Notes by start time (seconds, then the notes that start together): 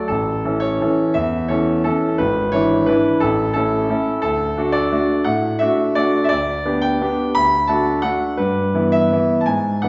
0.08 A1 A4
0.45 E3 C#4 A4
0.60 C#5
0.81 E3 C#4 A4
1.14 E2 E5
1.48 E3 C#4 A4 C#5
1.84 E3 C#4 A4
2.18 G#1 B4
2.52 E3 D4 E4 C#5
2.86 E3 D4 E4 B4
3.20 A1 A4
3.53 A3 C#4 E4 A4
3.89 A3 C#4 E4
4.22 D2 A4
4.57 A3 D4 F#4
4.72 D5
4.92 A3 D4 F#4
5.24 A2 F#5
5.59 A3 D4 F#4 E5
5.95 A3 D4 F#4 D5
6.24 E5
6.29 D2 D5
6.65 B3 D4 G4
6.81 G5
7.02 B3 D4 G4
7.35 D2 B5
7.67 A3 D4 F#4 A5
8.02 A3 D4 F#4 F#5
8.37 G2 B4
8.74 E3 B3 E4
8.92 E5
9.12 E3 B3 E4
9.41 A5
9.46 G#2 G#5
9.82 E3 B3 D4 F#5